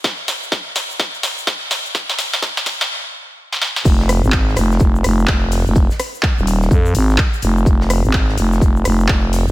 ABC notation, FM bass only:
X:1
M:4/4
L:1/16
Q:"Swing 16ths" 1/4=126
K:Fm
V:1 name="FM bass" clef=bass
z16 | z16 | F,,,3 A,,,3 F,,,2 F,,,2 F,,,2 F,,,3 F,,,- | F,,, z4 E,,,3 F,,2 A,,,2 z2 F,,,2 |
F,,,3 A,,,3 F,,,2 F,,,2 F,,,2 F,,,3 F,,, |]